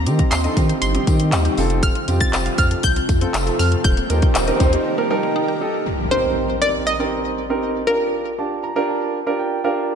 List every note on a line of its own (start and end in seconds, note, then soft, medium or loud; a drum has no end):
0.00 3.80 C3 medium
0.00 1.56 D#3 medium
0.00 1.56 G3 medium
0.00 1.56 D#4 medium
0.00 1.56 G4 medium
0.00 0.33 A#5 medium
0.06 0.23 D#3 loud
0.06 0.37 C4 medium
0.06 0.37 D#4 medium
0.06 0.37 G4 medium
0.06 closed hi-hat medium
0.06 tambourine soft
0.19 kick loud
0.19 closed hi-hat medium
0.31 0.48 D#2 loud
0.31 0.44 C5 medium
0.31 0.78 C6 medium
0.31 clap loud
0.31 closed hi-hat medium
0.31 tambourine loud
0.44 0.54 C4 medium
0.44 0.54 D#4 medium
0.44 0.54 A4 medium
0.44 0.56 D#5 medium
0.44 closed hi-hat soft
0.57 0.73 D#3 loud
0.57 0.87 C4 medium
0.57 0.87 D#4 medium
0.57 0.87 G4 medium
0.57 0.69 C5 medium
0.57 kick medium
0.57 closed hi-hat medium
0.57 tambourine medium
0.69 0.81 G4 medium
0.69 closed hi-hat medium
0.82 0.98 G1 loud
0.82 1.29 C6 medium
0.82 closed hi-hat loud
0.82 tambourine medium
0.95 1.05 C4 medium
0.95 1.06 C4 medium
0.95 1.05 D#4 medium
0.95 1.05 G4 medium
0.95 closed hi-hat medium
1.07 1.34 D#3 loud
1.07 1.19 G3 medium
1.07 1.48 C4 medium
1.07 1.48 D#4 medium
1.07 1.48 G4 loud
1.07 kick loud
1.07 closed hi-hat medium
1.07 tambourine soft
1.20 1.32 C4 medium
1.20 closed hi-hat medium
1.32 1.49 D#2 loud
1.32 1.44 D#4 medium
1.32 clap loud
1.32 closed hi-hat loud
1.32 tambourine medium
1.45 1.57 G4 medium
1.45 closed hi-hat medium
1.58 1.90 F1 loud
1.58 3.82 F3 medium
1.58 3.82 A3 medium
1.58 1.98 C4 medium
1.58 3.82 F4 medium
1.58 1.98 F4 medium
1.58 3.82 A4 medium
1.58 1.98 A4 loud
1.58 open hi-hat medium
1.58 tambourine medium
1.70 closed hi-hat soft
1.83 1.95 A3 medium
1.83 2.18 F6 loud
1.83 kick loud
1.83 closed hi-hat medium
1.83 tambourine soft
1.83 swell medium
1.95 2.07 C4 medium
1.95 closed hi-hat medium
2.08 2.24 F2 loud
2.08 2.89 C4 medium
2.08 2.89 F4 medium
2.08 2.89 G4 loud
2.08 closed hi-hat medium
2.08 tambourine soft
2.20 2.60 A6 loud
2.20 kick loud
2.20 closed hi-hat medium
2.33 2.49 F1 loud
2.33 2.45 C5 medium
2.33 clap loud
2.33 closed hi-hat medium
2.33 tambourine medium
2.46 2.58 F5 medium
2.46 closed hi-hat soft
2.58 2.75 F2 loud
2.58 2.70 C5 medium
2.58 2.84 F6 loud
2.58 kick medium
2.58 closed hi-hat medium
2.58 tambourine medium
2.71 2.83 A4 medium
2.71 closed hi-hat medium
2.83 3.00 C2 loud
2.83 3.55 G6 loud
2.83 kick medium
2.83 closed hi-hat loud
2.83 tambourine medium
2.96 3.08 C4 medium
2.96 closed hi-hat medium
3.09 3.25 F2 loud
3.09 3.21 A3 medium
3.09 kick medium
3.09 closed hi-hat medium
3.09 tambourine medium
3.21 3.84 C4 medium
3.21 3.33 C4 medium
3.21 3.85 F4 medium
3.21 3.85 A4 loud
3.21 closed hi-hat medium
3.34 3.50 F1 loud
3.34 3.46 F4 medium
3.34 clap loud
3.34 closed hi-hat loud
3.34 tambourine medium
3.47 3.59 A4 medium
3.47 closed hi-hat medium
3.59 3.76 F2 loud
3.59 3.85 F6 medium
3.59 open hi-hat medium
3.59 tambourine medium
3.72 closed hi-hat medium
3.84 4.01 D#1 loud
3.84 5.84 D#3 medium
3.84 3.96 G3 medium
3.84 5.84 G3 medium
3.84 5.84 A#3 medium
3.84 5.84 G4 medium
3.84 5.84 A#4 loud
3.84 5.32 G6 medium
3.84 kick loud
3.84 closed hi-hat medium
3.84 tambourine soft
3.97 4.09 A#3 medium
3.97 closed hi-hat medium
4.10 4.26 D#2 loud
4.10 4.40 D#4 medium
4.10 4.40 G4 medium
4.10 4.40 A#4 medium
4.10 closed hi-hat medium
4.10 tambourine soft
4.22 kick loud
4.22 closed hi-hat medium
4.35 4.51 D#1 loud
4.35 4.47 A#4 medium
4.35 clap loud
4.35 closed hi-hat medium
4.35 tambourine loud
4.47 4.58 D#4 medium
4.47 4.58 G4 medium
4.47 4.58 A#4 loud
4.47 4.59 D#5 medium
4.47 closed hi-hat soft
4.60 4.77 D#2 loud
4.60 4.90 D#4 loud
4.60 4.91 G4 loud
4.60 4.72 A#4 medium
4.60 4.91 C5 loud
4.60 kick medium
4.60 closed hi-hat medium
4.60 tambourine medium
4.73 4.85 G4 medium
4.73 closed hi-hat medium
4.98 5.10 A#3 medium
4.98 5.08 D#4 medium
4.98 5.08 G4 medium
4.98 5.08 A#4 loud
5.10 5.22 G3 medium
5.10 5.51 D#4 loud
5.10 5.51 G4 loud
5.10 5.51 A#4 loud
5.10 5.34 A5 medium
5.23 5.35 A#3 medium
5.36 5.48 D#4 medium
5.36 5.59 G5 medium
5.48 5.60 G4 medium
5.61 5.81 D#4 medium
5.61 5.81 G4 medium
5.61 5.81 A4 loud
5.61 5.84 D#5 medium
5.86 impact medium
6.11 6.52 C4 medium
6.11 6.52 D#4 medium
6.11 6.52 G4 medium
6.11 6.52 A#4 medium
6.11 6.63 C5 loud
6.61 6.92 C4 medium
6.61 6.92 D#4 medium
6.61 6.92 G4 medium
6.61 6.92 A#4 medium
6.61 6.73 D5 loud
6.87 7.91 D#5 loud
6.99 7.40 C4 medium
6.99 7.40 D#4 medium
6.99 7.40 G4 medium
6.99 7.40 A#4 medium
7.50 7.80 C4 medium
7.50 7.80 D#4 medium
7.50 7.80 G4 medium
7.50 7.80 A#4 loud
7.87 8.28 D4 medium
7.87 8.28 F4 medium
7.87 8.28 G4 medium
7.87 9.35 A#4 medium
7.87 8.28 A#4 loud
8.38 8.69 D4 medium
8.38 8.69 F4 medium
8.38 8.69 G4 medium
8.38 8.69 A5 medium
8.63 8.87 A#5 medium
8.76 9.16 D4 loud
8.76 9.16 F4 medium
8.76 9.17 G4 loud
8.76 9.17 A#4 loud
8.89 9.36 A5 medium
9.26 9.57 D4 medium
9.26 9.57 F4 medium
9.26 9.57 G4 medium
9.26 9.57 A#4 loud
9.39 9.63 G5 medium
9.64 9.95 D4 medium
9.64 9.95 F4 medium
9.64 9.95 G4 medium
9.64 9.95 A#4 loud
9.64 9.88 F5 medium